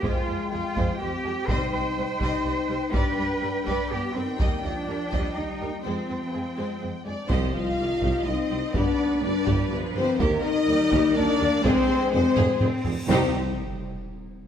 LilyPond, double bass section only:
\new Staff \with { instrumentName = "Double bass section" } { \clef bass \time 3/4 \key c \minor \tempo 4 = 124 f,8 f,8 f,8 f,8 f,8 f,8 | c,8 c,8 c,8 c,8 c,8 c,8 | g,8 g,8 g,8 g,8 g,8 g,8 | ees,8 ees,8 ees,8 ees,8 ees,8 ees,8 |
f,8 f,8 f,8 f,8 f,8 f,8 | c,8 r8 c,8 c,8 c,8 c,8 | g,8 r8 g,8 g,8 g,8 g,8 | ees,8 r8 ees,8 ees,8 ees,8 ees,8 |
f,8 r8 f,8 f,8 f,8 f,8 | c,8 r2 r8 | }